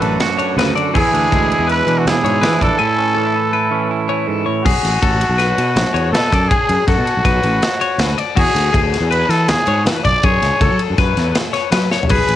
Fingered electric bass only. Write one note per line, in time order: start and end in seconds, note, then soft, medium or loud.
0.01 0.16 A1 medium
0.56 0.71 D2 medium
0.95 1.02 E2 loud
1.13 1.27 D2 medium
1.31 1.53 D2 medium
1.59 1.80 E2 medium
1.86 2.07 E3 medium
2.05 2.12 E2 medium
2.23 2.44 G#2 medium
2.43 2.50 E3 medium
2.61 2.68 A#1 medium
4.65 4.72 B1 loud
4.83 4.98 A1 medium
5.02 5.24 A1 medium
5.29 5.51 B1 medium
5.58 5.77 B2 medium
5.76 5.83 B1 loud
5.94 6.14 E2 medium
6.12 6.20 B2 loud
6.32 6.47 F#2 medium
6.69 6.77 F#2 medium
6.87 6.95 F#2 medium
6.98 7.05 B2 loud
7.17 7.24 B1 medium
7.25 7.39 B1 medium
7.44 7.58 A1 loud
7.98 8.13 D2 medium
8.37 8.44 E2 loud
8.55 8.70 D2 medium
8.74 8.96 D2 medium
9.00 9.23 E2 medium
9.29 9.50 E3 medium
9.49 9.56 E2 medium
9.67 9.87 G#2 medium
9.85 9.93 E3 medium
10.05 10.12 B1 medium
10.24 10.38 F#2 loud
10.42 10.49 C#2 medium
10.60 10.68 C#2 medium
10.71 10.78 F#3 medium
10.90 10.97 F#2 medium
10.98 11.13 F#2 loud
11.17 11.32 E2 loud
11.72 11.87 F#3 medium
12.10 12.18 B1 medium
12.29 12.36 A1 medium